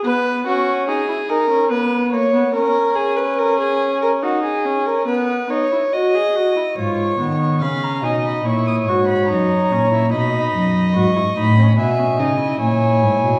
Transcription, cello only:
X:1
M:4/4
L:1/16
Q:1/4=72
K:C#m
V:1 name="Cello" clef=bass
z16 | z16 | G,,2 D,2 C,2 B,,2 ^A,,2 G,,2 F,,2 A,,2 | B,,2 F,,2 G,,2 A,,2 B,,2 C,2 ^A,,2 G,, B,, |]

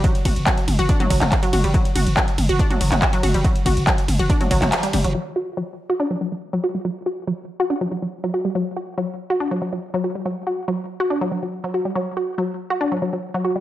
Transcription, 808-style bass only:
X:1
M:4/4
L:1/16
Q:1/4=141
K:D
V:1 name="808-style bass" clef=bass
z2 F,,, F,,, z2 F,,, F,,, z2 F,,, F,,, z2 F,,, F,,, | z2 F,,, F,,, z2 F,,, F,,, z2 F,,, F,,, z2 F,,, F,,, | z2 F,,, F,,, z2 F,,, F,,, z2 F,,, F,,, z2 F,,, F,,, | z16 |
z16 | z16 | z16 | z16 |]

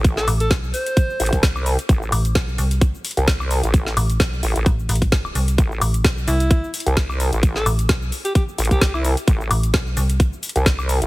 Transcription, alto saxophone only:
X:1
M:4/4
L:1/16
Q:"Swing 16ths" 1/4=130
K:Am
V:1 name="Alto saxophone"
z A z A z2 c6 z4 | z16 | z16 | z6 E4 z6 |
z A z4 z G G z2 G2 E E z | z16 |]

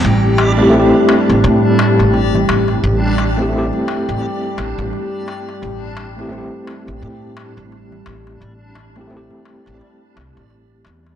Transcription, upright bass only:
X:1
M:4/4
L:1/16
Q:"Swing 16ths" 1/4=86
K:Am
V:1 name="Upright bass" clef=bass
A,,,4- A,,, z2 A,,, A,,3 A,,,3 A,,,2 | A,,,4- A,,, z2 A,,, z2 A,,, A,,, z4 | A,,,4- A,,, z2 A,,, A,,3 A,,,3 A,,,2 | A,,,4- A,,, z2 A,,, z2 C,, A,,,3 E,,2 |]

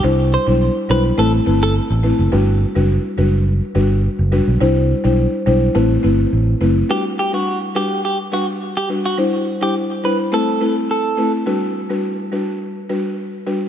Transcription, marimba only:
X:1
M:4/4
L:1/16
Q:1/4=105
K:G
V:1 name="Marimba"
[G,DEc] z2 [G,DEc] z2 [G,DEc] z [A,CEB]2 [A,CEB] z3 [A,CEB] z | [G,DFB] z2 [G,DFB] z2 [G,DFB] z3 [G,DFB] z3 [G,DFB] z | [G,DEc] z2 [G,DEc] z2 [G,DEc] z [A,CEB]2 [A,CEB] z3 [A,CEB] z | [G,DFB] z2 [G,DFB] z2 [G,DFB] z3 [G,DFB] z3 [G,DFB] z |
[G,DEc] z2 [G,DEc] z2 [G,DEc] z [A,CEB]2 [A,CEB] z3 [A,CEB] z | [G,DFB] z2 [G,DFB] z2 [G,DFB] z3 [G,DFB] z3 [G,DFB] z |]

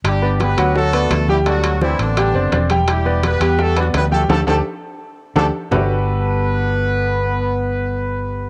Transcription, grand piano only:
X:1
M:4/4
L:1/8
Q:1/4=169
K:G
V:1 name="Grand piano"
z [B,Bd]2 [F,Ff] [F,Ff] [B,Bd]2 [G,Gg] | [G,Ad]2 [Ccd]2 [G,Gg] [Ccd] [Ccd] [G,Gg]- | [G,Gg] [B,Bd]2 [G,Gg] [G,Gg] [B,Bd]2 [G,Gg] | [DGA] [DGA] z4 [DGA] z |
[G,DFGAB]8- | [G,DFGAB]8 |]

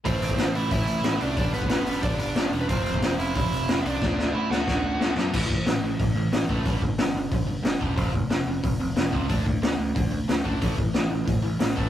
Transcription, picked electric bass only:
X:1
M:4/4
L:1/8
Q:1/4=182
K:Am
V:1 name="Picked electric bass" clef=bass
A,,, A,,, A,,, A,,, A,,, A,,, A,,, C,, | G,,, G,,, G,,, G,,, G,,, G,,, G,,, E,,, | F,,, F,,, F,,, F,,, F,,, F,,, F,,, C,, | D,, D,, D,, D,, D,, D,, D,, ^F,, |
A,,, A,,, A,,, A,,, A,,, A,,, A,,, A,,, | G,,, G,,, G,,, G,,, G,,,2 G,,, E,,, | F,,, F,,, F,,, F,,, F,,, F,,, F,,, ^C,, | D,, D,, D,, D,, D,,2 D,, D,, |
A,,, A,,, A,,, A,,, A,,, A,,, A,,, A,,, |]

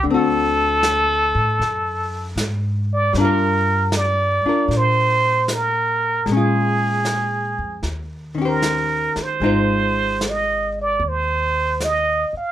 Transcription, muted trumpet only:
X:1
M:4/4
L:1/8
Q:"Swing" 1/4=77
K:Gphr
V:1 name="Muted trumpet"
=A6 z d | B2 d2 c2 B2 | A4 z B2 c- | c2 e d c2 e f |]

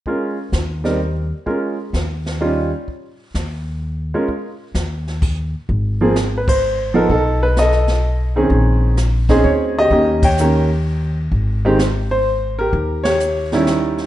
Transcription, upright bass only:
X:1
M:3/4
L:1/8
Q:"Swing" 1/4=128
K:Ab
V:1 name="Upright bass" clef=bass
z2 E,,3 z | z2 E,,3 z | z2 E,,3 z | z2 E,,3 z |
A,,,6 | =B,,,6 | B,,,4 =D,,2 | E,,6 |
A,,,6 | E,,6 |]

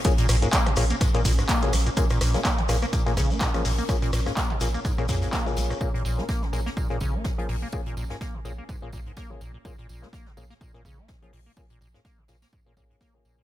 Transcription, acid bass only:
X:1
M:4/4
L:1/16
Q:"Swing 16ths" 1/4=125
K:Bbm
V:1 name="Acid bass" clef=bass
B,, B,, B,, A,, B, B,, B,, B, A,, B,, B,, A,, B, B,, B, B,, | B,, B,, B,, B, B, D, B,, B, B,, B,, D, B, A,, F, B,, B, | B,, B,, B,, A,, B, B,, B,, B, A,, B,, B,, A,, B, B,, B, B,, | B,, B,, B,, B, B, D, B,, B, B,, B,, D, B, A,, F, B,, B, |
B,, B,, B,, A,, B, B,, B,, B, A,, B,, B,, A,, B, B,, B,, B,, | B,, B,, B,, B, B, D, B,, B, B,, B,, D, B, A,, F, B,, B, | B,, B,, B,, A,, B, B,, B,, B, A,, B,, B,, A,, B, B,, B,, B,, |]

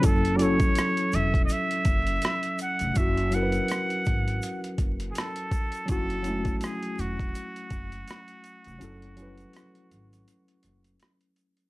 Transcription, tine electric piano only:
X:1
M:4/4
L:1/8
Q:"Swing 16ths" 1/4=82
K:F#m
V:1 name="Tine electric piano"
[F,CEA] [F,CEA]3 z4 | [F,CEF] [F,CE^AB]3 z4 | [F,CEF] [F,A,CE]3 z4 | [F,CEA] [F,CEB]3 z4 |]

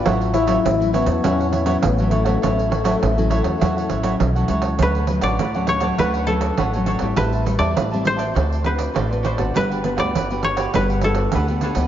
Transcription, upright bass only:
X:1
M:4/4
L:1/16
Q:1/4=101
K:A
V:1 name="Upright bass" clef=bass
A,,,4 A,,,3 E,, E,,4 A,,,4 | A,,,4 A,,,3 E,, E,,2 A,,,2 B,,,2 C,,2 | [K:D] D,,3 A,,, D,,4 D,,4 A,,,3 A,,, | A,,,3 E,, A,,,4 D,,4 A,,,3 ^G,,, |
G,,,3 D,, G,,,4 G,,,4 D,,3 D,, |]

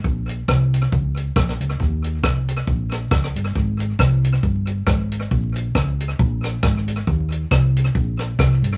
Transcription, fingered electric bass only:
X:1
M:4/4
L:1/8
Q:"Swing" 1/4=136
K:Bbdor
V:1 name="Fingered electric bass" clef=bass
B,,,2 C,,2 D,,2 B,,, D,, | E,,2 C,,2 B,,,2 D,, G,,, | A,,,2 C,,2 G,,,2 A,,,2 | B,,,2 D,,2 B,,,2 A,,,2 |
E,,2 C,,2 B,,,2 C,, G,,, |]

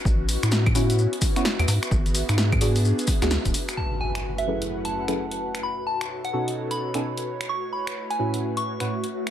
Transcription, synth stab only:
X:1
M:4/4
L:1/16
Q:"Swing 16ths" 1/4=129
K:A
V:1 name="Synth stab"
z6 [B,CEF]4- [B,CEF] [B,CEF] z4 | z6 [B,DFG]4- [B,DFG] [B,DFG] z4 | z6 [F,CEGAB]4- [F,CEGAB] [F,CEGAB] z4 | z6 [B,,C^DFA]4- [B,,CDFA] [B,,CDFA] z4 |
z6 [A,,CEFB]4- [A,,CEFB] [A,,CEFB] z4 |]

